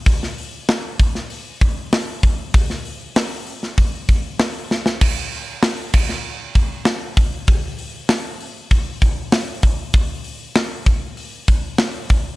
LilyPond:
\new DrumStaff \with { instrumentName = "Drums" } \drummode { \time 4/4 \tempo 4 = 97 <hho bd>16 sn16 hho8 <hho sn>8 <hho bd>16 sn16 hho8 <hho bd>8 <hho sn>8 <hho bd>8 | <hho bd>16 sn16 hho8 <hho sn>8 hho16 sn16 <hho bd>8 <hho bd>8 <hho sn>8 sn16 sn16 | <cymc bd>8 hho8 <hho sn>8 <cymc bd>16 sn16 r8 <hho bd>8 <hho sn>8 <hho bd>8 | <hho bd>8 hho8 <hho sn>8 hho8 <hho bd>8 <hho bd>8 <hho sn>8 <hho bd>8 |
<hho bd>8 hho8 <hho sn>8 <hho bd>8 hho8 <hho bd>8 <hho sn>8 <hho bd>8 | }